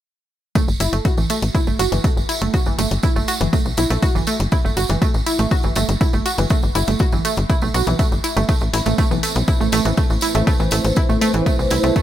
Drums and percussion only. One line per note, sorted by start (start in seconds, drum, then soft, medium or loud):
0.55 kick loud
0.55 closed hi-hat medium
0.55 tambourine medium
0.68 tambourine soft
0.80 closed hi-hat medium
0.80 tambourine medium
0.93 closed hi-hat medium
0.93 tambourine soft
1.05 kick loud
1.05 closed hi-hat medium
1.05 tambourine soft
1.17 tambourine soft
1.30 closed hi-hat medium
1.30 tambourine medium
1.42 closed hi-hat medium
1.42 tambourine soft
1.55 kick loud
1.55 closed hi-hat medium
1.55 tambourine soft
1.67 tambourine soft
1.79 closed hi-hat medium
1.79 tambourine medium
1.92 closed hi-hat medium
1.92 tambourine soft
2.04 kick loud
2.04 closed hi-hat medium
2.04 tambourine soft
2.17 tambourine soft
2.29 closed hi-hat medium
2.29 tambourine medium
2.41 closed hi-hat medium
2.41 tambourine soft
2.54 kick loud
2.54 closed hi-hat medium
2.54 tambourine medium
2.66 tambourine soft
2.78 closed hi-hat medium
2.78 tambourine medium
2.91 closed hi-hat medium
2.91 tambourine soft
3.03 kick loud
3.03 closed hi-hat soft
3.03 tambourine soft
3.16 tambourine soft
3.28 closed hi-hat medium
3.28 tambourine medium
3.41 closed hi-hat medium
3.41 tambourine soft
3.53 kick loud
3.53 closed hi-hat medium
3.53 tambourine medium
3.66 tambourine soft
3.77 closed hi-hat medium
3.77 tambourine medium
3.90 closed hi-hat medium
3.90 tambourine soft
4.02 kick loud
4.02 closed hi-hat medium
4.02 tambourine medium
4.16 tambourine soft
4.27 closed hi-hat medium
4.27 tambourine medium
4.40 closed hi-hat medium
4.40 tambourine soft
4.52 kick loud
4.52 closed hi-hat medium
4.52 tambourine soft
4.66 tambourine soft
4.77 closed hi-hat medium
4.77 tambourine medium
4.88 closed hi-hat medium
4.88 tambourine soft
5.02 kick loud
5.02 closed hi-hat soft
5.02 tambourine medium
5.14 tambourine soft
5.26 closed hi-hat medium
5.26 tambourine medium
5.39 closed hi-hat medium
5.39 tambourine soft
5.51 kick loud
5.51 closed hi-hat soft
5.51 tambourine medium
5.63 tambourine soft
5.75 closed hi-hat medium
5.75 tambourine medium
5.89 closed hi-hat medium
5.89 tambourine soft
6.01 kick loud
6.01 closed hi-hat medium
6.01 tambourine medium
6.13 tambourine soft
6.26 closed hi-hat medium
6.26 tambourine medium
6.38 closed hi-hat soft
6.38 tambourine soft
6.50 kick loud
6.50 closed hi-hat medium
6.50 tambourine soft
6.62 tambourine soft
6.75 closed hi-hat medium
6.75 tambourine medium
6.87 closed hi-hat medium
6.87 tambourine soft
6.99 kick loud
6.99 closed hi-hat soft
6.99 tambourine medium
7.12 tambourine soft
7.25 closed hi-hat medium
7.25 tambourine medium
7.36 closed hi-hat soft
7.36 tambourine soft
7.49 kick loud
7.49 closed hi-hat soft
7.49 tambourine medium
7.61 tambourine soft
7.74 closed hi-hat medium
7.74 tambourine medium
7.87 closed hi-hat soft
7.87 tambourine soft
7.99 kick loud
7.99 closed hi-hat medium
7.99 tambourine medium
8.12 tambourine soft
8.24 closed hi-hat medium
8.24 tambourine loud
8.37 closed hi-hat soft
8.37 tambourine soft
8.49 kick loud
8.49 closed hi-hat medium
8.49 tambourine medium
8.61 tambourine soft
8.73 open hi-hat loud
8.73 tambourine medium
8.86 closed hi-hat medium
8.86 tambourine soft
8.98 kick loud
8.98 closed hi-hat soft
8.98 tambourine soft
9.11 tambourine soft
9.23 open hi-hat medium
9.23 tambourine medium
9.36 closed hi-hat medium
9.36 tambourine soft
9.48 kick loud
9.48 closed hi-hat soft
9.48 tambourine medium
9.61 tambourine soft
9.72 open hi-hat loud
9.72 tambourine medium
9.85 closed hi-hat medium
9.85 tambourine soft
9.97 kick loud
9.97 closed hi-hat medium
9.97 tambourine medium
10.10 tambourine soft
10.21 open hi-hat medium
10.21 tambourine medium
10.35 closed hi-hat soft
10.35 tambourine soft
10.47 kick loud
10.47 closed hi-hat medium
10.47 tambourine soft
10.60 tambourine soft
10.71 open hi-hat loud
10.71 tambourine medium
10.85 closed hi-hat medium
10.85 tambourine soft
10.96 kick loud
10.96 closed hi-hat medium
10.96 tambourine soft
11.09 tambourine soft
11.21 open hi-hat medium
11.21 tambourine medium
11.34 closed hi-hat medium
11.34 tambourine soft
11.46 kick loud
11.46 closed hi-hat medium
11.46 tambourine soft
11.59 tambourine soft
11.70 open hi-hat loud
11.70 tambourine medium
11.83 closed hi-hat medium
11.83 tambourine soft
11.96 kick loud
11.96 closed hi-hat medium
11.96 tambourine soft